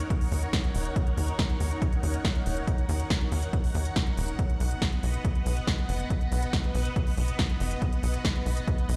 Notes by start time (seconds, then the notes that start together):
Already playing: D#4 A#4 C#5 F#5
0.10 kick, closed hi-hat
0.21 open hi-hat
0.32 D#2, open hi-hat
0.42 closed hi-hat
0.53 kick, snare, closed hi-hat
0.64 closed hi-hat
0.75 D#1, open hi-hat
0.85 closed hi-hat
0.96 kick, closed hi-hat
1.07 closed hi-hat
1.17 D#2, open hi-hat
1.28 closed hi-hat
1.39 kick, snare, closed hi-hat
1.50 closed hi-hat
1.60 D#2, open hi-hat
1.71 closed hi-hat
1.82 kick, closed hi-hat
1.93 closed hi-hat
2.03 D#2, open hi-hat
2.14 closed hi-hat
2.25 kick, snare, closed hi-hat
2.35 closed hi-hat
2.46 D#1, open hi-hat
2.57 closed hi-hat
2.67 kick, closed hi-hat
2.78 closed hi-hat
2.89 D#2, open hi-hat
3.00 closed hi-hat
3.10 kick, snare, closed hi-hat
3.21 closed hi-hat
3.32 D#2, open hi-hat
3.42 closed hi-hat
3.53 kick, closed hi-hat
3.64 open hi-hat
3.75 D#2, open hi-hat
3.85 closed hi-hat
3.96 kick, snare, closed hi-hat
4.07 closed hi-hat
4.17 D#1, open hi-hat
4.28 closed hi-hat
4.39 B3 B4 D#5, kick, closed hi-hat
4.50 closed hi-hat
4.60 B1, open hi-hat
4.71 closed hi-hat
4.82 kick, snare, closed hi-hat
4.92 closed hi-hat
5.03 B1, open hi-hat
5.14 closed hi-hat
5.25 kick, closed hi-hat
5.35 closed hi-hat
5.46 B1, open hi-hat
5.57 closed hi-hat
5.67 kick, snare, closed hi-hat
5.78 closed hi-hat
5.89 F#1, open hi-hat
6.00 closed hi-hat
6.10 kick, closed hi-hat
6.21 closed hi-hat
6.32 B1, open hi-hat
6.42 closed hi-hat
6.53 kick, snare, closed hi-hat
6.64 closed hi-hat
6.75 B1, open hi-hat
6.85 closed hi-hat
6.96 kick, closed hi-hat
7.07 open hi-hat
7.17 B1, open hi-hat
7.28 closed hi-hat
7.39 kick, snare, closed hi-hat
7.50 closed hi-hat
7.60 F#1, open hi-hat
7.71 closed hi-hat
7.82 kick, closed hi-hat
7.93 closed hi-hat
8.03 B1, open hi-hat
8.14 closed hi-hat
8.25 kick, snare, closed hi-hat
8.35 closed hi-hat
8.46 B1, open hi-hat
8.57 closed hi-hat
8.68 kick, closed hi-hat
8.78 closed hi-hat
8.89 B1, open hi-hat